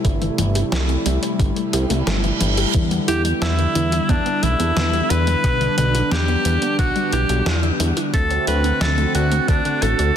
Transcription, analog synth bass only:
0.05 0.30 G1 medium
0.38 0.63 G1 medium
0.72 0.97 C2 medium
1.06 1.18 C2 medium
1.39 1.52 G1 loud
1.73 1.86 C2 medium
1.90 2.03 C2 medium
2.07 2.32 G1 loud
2.41 2.66 G1 medium
2.74 2.99 E2 loud
3.08 3.33 E2 medium
3.42 3.67 E2 medium
3.76 4.01 E2 medium
4.09 4.22 E2 medium
4.43 4.55 B1 medium
4.60 4.72 E2 medium
4.77 5.02 E2 medium
5.10 5.35 E2 medium
5.44 5.69 B1 medium
5.78 6.03 B1 medium
6.11 6.36 E2 medium
6.45 6.58 E2 medium
6.79 6.91 B1 medium
7.12 7.25 B1 medium
7.29 7.42 B1 loud
7.46 7.71 E2 medium
7.80 7.92 E2 medium
8.14 8.39 D2 loud
8.47 8.72 D2 medium
8.81 9.06 D2 medium
9.15 9.40 D2 medium
9.48 9.61 D2 medium
9.82 9.95 A1 medium
9.99 10.12 D2 medium

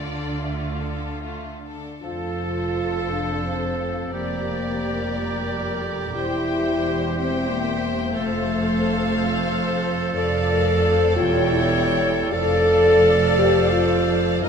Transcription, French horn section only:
2.02 3.07 F4 medium
3.11 3.45 D4 medium
3.46 4.14 C4 soft
4.14 5.81 A#3 medium
6.17 7.13 E4 medium
7.18 7.50 C4 medium
7.49 8.15 A#3 medium
8.15 9.83 A3 medium
10.15 11.13 A4 loud
11.16 11.52 F4 loud
11.52 12.32 E4 medium
12.32 13.39 A4 loud
13.38 13.73 G4 loud
13.72 14.42 F4 medium
14.43 14.49 D#4 loud

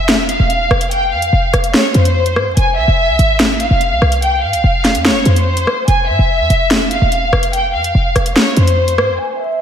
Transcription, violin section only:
0.00 0.25 E5 loud
0.29 0.88 F5 medium
0.92 1.08 G5 loud
1.12 1.70 F5 medium
1.74 1.91 C#5 medium
1.95 2.53 C5 medium
2.57 2.74 G#5 loud
2.78 3.56 E5 loud
3.61 4.19 F5 medium
4.22 4.39 G5 loud
4.43 5.01 F5 medium
5.05 5.22 C#5 medium
5.26 5.84 C5 medium
5.88 6.05 G#5 loud
6.08 6.87 E5 loud
6.91 7.50 F5 medium
7.54 7.70 G5 loud
7.74 8.33 F5 medium
8.36 8.53 C#5 medium
8.57 9.15 C5 medium
9.19 9.36 G#5 medium
9.40 9.62 E5 loud

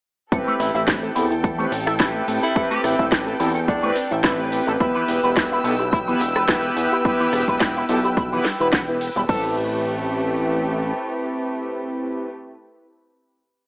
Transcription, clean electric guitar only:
0.32 0.36 A4 medium
0.47 0.53 A3 loud
0.75 0.81 E5 medium
1.03 1.09 A4 medium
1.15 1.27 E4 medium
1.31 1.35 A4 medium
1.44 1.48 A4 medium
1.58 1.65 A3 loud
1.86 1.93 E5 medium
1.99 2.07 E4 medium
2.42 2.47 A4 medium
2.55 2.60 A4 medium
2.70 2.77 A3 loud
2.99 3.06 E5 medium
3.27 3.33 A4 medium
3.40 3.51 E4 medium
3.55 3.59 A4 medium
3.68 3.73 A4 medium
3.83 3.90 A3 loud
4.11 4.18 E5 medium
4.24 4.32 E4 medium
4.67 4.71 A4 medium
4.80 4.85 E4 medium
4.95 5.02 E3 loud
5.23 5.30 B4 medium
5.52 5.58 E4 medium
5.65 5.76 B3 medium
5.79 5.83 E4 medium
5.93 5.97 E4 medium
6.08 6.14 E3 loud
6.36 6.42 B4 medium
6.49 6.56 B3 medium
6.92 6.96 E4 medium
7.05 7.10 E4 medium
7.20 7.26 E3 loud
7.48 7.55 B4 medium
7.77 7.83 E4 medium
7.89 8.00 B3 medium
8.05 8.08 E4 medium
8.18 8.22 E4 medium
8.32 8.39 E3 loud
8.60 8.67 B4 medium
8.73 8.81 B3 medium
9.16 9.20 E4 medium
9.29 9.55 A4 loud

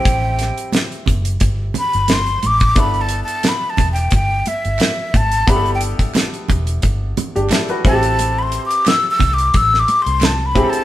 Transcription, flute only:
0.00 0.71 G5 medium
1.79 2.14 B5 loud
2.13 2.48 C6 medium
2.47 2.81 D6 loud
2.80 3.03 B5 loud
3.01 3.23 A5 medium
3.24 3.50 A5 medium
3.48 3.71 B5 medium
3.70 3.91 A5 medium
3.93 4.12 G5 medium
4.15 4.49 G5 loud
4.48 5.18 E5 medium
5.16 5.51 A5 medium
5.50 5.71 B5 medium
5.75 5.82 G5 medium
7.87 8.40 A5 loud
8.39 8.44 B5 medium
8.43 8.64 C6 loud
8.66 8.89 D6 loud
8.88 9.09 E6 loud
9.11 9.35 E6 loud
9.34 9.58 D6 medium
9.57 9.81 E6 loud
9.79 10.04 D6 loud
10.02 10.26 C6 loud
10.25 10.47 A5 medium
10.46 10.71 B5 loud
10.70 10.84 A5 loud

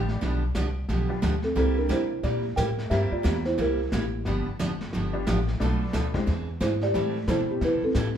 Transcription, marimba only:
1.44 1.56 C4 medium
1.44 1.56 A4 medium
1.57 1.77 C4 medium
1.57 1.76 A4 loud
1.78 1.90 D4 medium
1.78 1.91 A#4 medium
1.92 2.22 E4 medium
1.92 2.25 C5 medium
2.24 2.55 G4 medium
2.24 2.58 D5 medium
2.56 2.89 A#4 medium
2.56 2.91 G5 medium
2.90 3.11 G4 medium
2.90 3.10 E5 loud
3.12 3.43 F4 medium
3.12 3.47 D5 medium
3.46 3.58 E4 medium
3.46 3.59 C5 medium
3.60 3.91 E4 medium
3.60 3.91 A#4 medium
3.94 4.25 A#3 medium
3.94 4.56 G4 medium
6.61 6.81 E4 medium
6.61 6.83 C5 medium
6.83 7.26 G4 medium
6.83 7.26 D5 loud
7.30 7.49 E4 medium
7.30 7.51 C5 loud
7.51 7.62 B3 medium
7.51 7.62 G4 medium
7.65 7.83 E4 medium
7.65 7.83 B4 medium
7.84 8.15 C4 medium
7.84 8.17 A4 medium

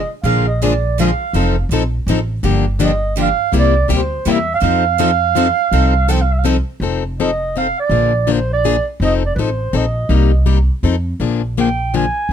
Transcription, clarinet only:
0.24 0.45 F5 loud
0.47 0.60 D#5 medium
0.62 0.95 D5 medium
1.00 1.67 F5 medium
2.83 3.15 D#5 medium
3.20 3.52 F5 medium
3.57 3.89 D5 loud
3.95 4.32 C5 medium
4.30 4.50 E5 medium
4.54 6.12 F5 loud
6.10 6.23 G5 medium
6.21 6.34 F5 medium
6.33 6.40 E5 medium
6.39 6.45 F5 medium
7.20 7.53 D#5 medium
7.58 7.77 F5 medium
7.79 8.33 D5 medium
8.31 8.52 C5 medium
8.53 8.85 D5 medium
9.04 9.13 D#5 loud
9.25 9.32 D5 medium
9.35 9.41 B4 medium
9.40 9.78 C5 medium
9.76 10.48 D#5 medium
11.60 11.98 G5 loud
11.96 12.33 G#5 loud

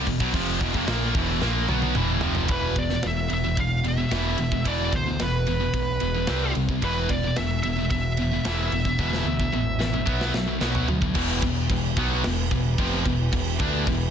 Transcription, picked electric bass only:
0.07 0.20 E1 medium
0.20 0.33 B1 medium
0.34 0.59 F1 loud
0.61 0.74 E1 medium
0.74 0.87 F1 medium
0.87 1.13 A#1 medium
1.15 1.40 E1 medium
1.41 1.67 A#1 medium
1.68 1.94 B1 loud
1.96 2.21 E1 loud
2.23 2.48 F1 medium
2.49 2.96 E1 medium
3.04 3.27 E1 medium
3.30 3.54 E1 medium
3.58 4.04 E1 medium
4.11 4.35 E1 medium
4.38 4.62 E1 medium
4.66 4.89 E1 medium
4.92 5.16 D2 medium
5.20 5.67 E1 medium
5.74 5.97 B1 medium
6.01 6.25 E1 medium
6.29 6.52 C2 medium
6.56 6.79 C2 medium
6.83 7.30 E1 medium
7.37 7.61 E1 medium
7.64 7.87 E1 medium
7.90 8.38 E1 medium
8.45 8.68 E1 medium
8.71 8.95 E1 medium
8.99 9.22 E1 medium
9.25 9.49 D2 medium
9.53 10.00 A1 medium
10.07 10.31 B1 medium
10.34 10.58 B1 medium
10.61 10.85 B1 medium
10.88 11.12 D2 medium
11.15 11.41 E1 medium
11.43 11.68 E1 medium
11.70 11.95 E1 medium
11.97 12.23 B1 medium
12.25 12.50 E1 medium
12.51 12.77 E1 medium
12.79 13.04 F1 loud
13.05 13.31 E1 medium
13.33 13.58 E1 medium
13.60 13.85 D2 loud
13.87 14.10 E1 medium

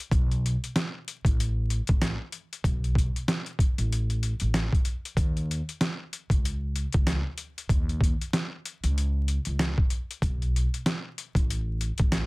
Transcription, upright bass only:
0.12 0.55 B1 loud
1.25 1.79 A1 loud
1.89 2.16 A1 medium
2.64 3.07 B1 loud
3.78 4.32 A1 medium
4.41 4.68 A1 medium
5.17 5.60 D#2 loud
6.30 6.84 C#2 medium
6.94 7.21 C#2 medium
7.70 8.13 D#2 loud
8.84 9.37 C#2 medium
9.47 9.73 C#2 medium
10.22 10.65 B1 loud
11.35 11.89 A1 loud
12.00 12.26 A1 medium

